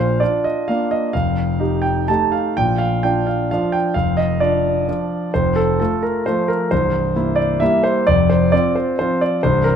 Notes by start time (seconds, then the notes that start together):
Already playing: A#1 A#2 C5 F5
0.20 D4 F4 D5
0.44 D#5
0.68 A#3 D4 F4 F5
0.91 D#5
1.13 F1 F2 F5
1.59 D#4 G4
1.82 G5
2.08 A3 D#4 G4 A5
2.32 F5
2.57 A#1 A#2 G5
2.78 F5
3.03 D4 F4 G5
3.27 F5
3.51 F3 D4 F4 F5
3.72 G5
3.94 F1 F2 F5
4.17 D#5
4.40 D4 F4 D5
4.88 F3 D4 F4
5.34 F1 F2 C5
5.56 A4
5.80 A3 F4 A4
6.03 A#4
6.26 F3 A3 F4 C5
6.48 A#4
6.71 C1 C2 C5
7.16 A#3 E4
7.36 D5
7.60 G3 A#3 E4 E5
7.83 C5
8.07 F1 F2 D5
8.30 C5
8.52 C4 F4 D5
8.76 C5
8.99 F3 C4 F4 C5
9.21 D5
9.43 C1 C2 C5
9.64 A#4